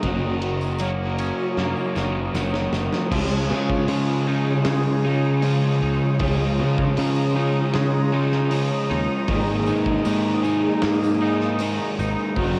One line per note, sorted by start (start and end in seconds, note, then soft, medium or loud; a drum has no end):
0.00 1.31 F#1 medium
0.00 1.19 F#2 medium
0.00 1.19 C#3 medium
0.00 0.42 D#3 medium
0.00 1.19 D#4 medium
0.00 3.09 F#4 medium
0.00 3.08 C#5 medium
0.00 3.08 A#5 medium
0.00 3.07 D#6 medium
0.00 kick loud
0.00 ride loud
0.00 tambourine soft
0.04 0.79 F#3 loud
0.04 0.80 A#3 medium
0.04 0.80 C#4 loud
0.04 0.81 F#4 loud
0.41 1.95 D#3 medium
0.41 ride medium
0.41 tambourine soft
0.61 tambourine medium
0.78 1.57 F#3 medium
0.78 1.57 A#3 medium
0.78 1.57 C#4 medium
0.78 1.58 F#4 medium
0.78 ride medium
0.78 tambourine loud
1.19 3.12 C#4 medium
1.19 ride medium
1.19 tambourine medium
1.38 tambourine soft
1.57 2.35 F#2 medium
1.57 1.74 F#2 medium
1.57 2.35 C#3 medium
1.57 1.97 F#3 medium
1.57 3.12 A#3 medium
1.57 1.96 A#3 loud
1.57 1.95 C#4 medium
1.57 1.94 F#4 loud
1.57 snare medium
1.77 tambourine soft
1.95 2.28 F#1 medium
1.95 2.33 D#3 medium
1.95 2.33 F#3 medium
1.95 2.33 A#3 medium
1.95 2.34 C#4 medium
1.95 2.35 F#4 medium
1.95 snare medium
1.95 tambourine medium
2.34 2.66 F#1 medium
2.34 2.72 D#3 medium
2.34 3.09 F#3 medium
2.34 3.10 A#3 medium
2.34 3.10 C#4 medium
2.34 3.10 F#4 medium
2.34 snare medium
2.34 tambourine loud
2.54 snare medium
2.72 2.89 F#1 medium
2.72 3.11 D#3 medium
2.72 snare loud
2.72 tambourine medium
2.93 snare medium
2.93 tambourine soft
3.10 3.52 C#2 medium
3.10 6.20 C#3 medium
3.10 3.50 F3 medium
3.10 3.87 G#3 loud
3.10 3.52 C#4 loud
3.10 9.24 F4 medium
3.10 3.51 F4 loud
3.10 3.49 G#4 loud
3.10 9.24 C#5 medium
3.10 6.16 G#5 medium
3.10 12.59 D#6 medium
3.10 kick loud
3.10 crash loud
3.50 3.82 C#3 loud
3.50 3.87 F3 medium
3.50 3.88 C#4 medium
3.50 3.88 F4 medium
3.50 3.89 G#4 medium
3.69 kick medium
3.87 4.52 C#3 medium
3.87 5.42 F3 medium
3.87 5.42 G#3 medium
3.87 4.29 C#4 medium
3.87 4.27 F4 medium
3.87 4.26 G#4 medium
3.87 open hi-hat medium
4.27 5.06 C#4 medium
4.27 5.04 D#4 medium
4.27 5.05 F4 medium
4.27 5.04 G#4 medium
4.65 5.61 C#3 loud
4.65 7.74 G#3 medium
4.65 snare loud
4.65 open hi-hat medium
5.04 5.42 C#4 medium
5.04 5.81 D#4 medium
5.04 5.43 F4 medium
5.04 5.44 G#4 medium
5.42 6.18 F3 medium
5.42 6.21 G#3 medium
5.42 6.20 C#4 medium
5.42 6.21 F4 medium
5.42 6.22 G#4 medium
5.42 open hi-hat medium
5.82 5.98 C#2 loud
5.82 7.36 D#4 medium
6.19 6.61 C#2 loud
6.19 6.97 C#3 medium
6.19 6.58 F3 medium
6.19 6.97 G#3 loud
6.19 6.59 C#4 loud
6.19 6.59 F4 loud
6.19 6.59 G#4 loud
6.19 12.59 A#5 medium
6.19 kick loud
6.19 open hi-hat medium
6.59 6.91 C#3 loud
6.59 6.96 F3 medium
6.59 6.97 C#4 medium
6.59 6.97 F4 medium
6.59 6.99 G#4 medium
6.78 kick medium
6.97 7.61 C#3 loud
6.97 8.51 F3 medium
6.97 8.50 G#3 medium
6.97 7.36 C#4 medium
6.97 7.35 F4 medium
6.97 7.35 G#4 medium
6.97 open hi-hat medium
7.35 8.13 C#4 medium
7.35 8.13 D#4 medium
7.35 8.12 F4 medium
7.35 8.11 G#4 medium
7.73 8.70 C#3 loud
7.73 9.28 G#3 medium
7.73 snare loud
7.73 open hi-hat medium
8.12 8.50 C#4 medium
8.12 8.90 D#4 medium
8.12 8.51 F4 medium
8.12 8.51 G#4 medium
8.32 snare soft
8.51 9.28 F3 medium
8.51 9.26 G#3 medium
8.51 9.26 C#4 medium
8.51 9.26 F4 medium
8.51 9.27 G#4 medium
8.51 open hi-hat medium
8.90 9.06 D#2 loud
8.90 10.44 D#4 medium
9.28 9.71 G#1 loud
9.28 9.66 D#3 medium
9.28 10.04 G#3 loud
9.28 9.70 A#3 loud
9.28 9.68 D#4 loud
9.28 12.34 G#4 medium
9.28 9.66 G#4 loud
9.28 12.33 D#5 medium
9.28 kick loud
9.28 open hi-hat medium
9.48 tambourine soft
9.66 10.00 G#2 medium
9.66 10.04 D#3 medium
9.66 10.05 A#3 medium
9.66 10.06 D#4 medium
9.66 10.06 G#4 medium
9.66 tambourine medium
9.86 kick medium
10.05 10.69 G#2 loud
10.05 11.59 D#3 medium
10.05 10.82 G#3 medium
10.05 10.45 A#3 medium
10.05 10.44 D#4 medium
10.05 10.42 G#4 medium
10.05 open hi-hat medium
10.05 tambourine medium
10.43 11.22 A#3 medium
10.43 11.22 D#4 medium
10.43 11.21 D#4 medium
10.43 11.20 G#4 medium
10.43 tambourine medium
10.82 11.78 G#2 loud
10.82 12.37 A#3 medium
10.82 snare loud
10.82 open hi-hat medium
11.03 tambourine medium
11.21 11.59 A#3 medium
11.21 11.99 D#4 medium
11.21 11.61 D#4 medium
11.21 11.61 G#4 medium
11.21 tambourine soft
11.41 snare soft
11.41 tambourine soft
11.59 12.37 D#3 medium
11.59 12.35 G#3 medium
11.59 12.35 A#3 medium
11.59 12.38 D#4 medium
11.59 12.35 G#4 medium
11.59 open hi-hat medium
11.59 tambourine loud
11.99 12.14 G#1 loud
11.99 12.59 D#4 medium
11.99 tambourine medium
12.19 tambourine soft
12.36 12.59 F#1 loud
12.36 12.59 F#2 loud
12.36 12.59 C#3 medium
12.36 12.59 D#3 medium
12.36 12.59 F#3 loud
12.36 12.59 A#3 loud
12.36 12.59 C#4 loud
12.36 12.59 F#4 medium
12.36 12.59 F#4 loud
12.36 12.59 C#5 medium
12.36 kick loud
12.36 open hi-hat medium
12.36 tambourine soft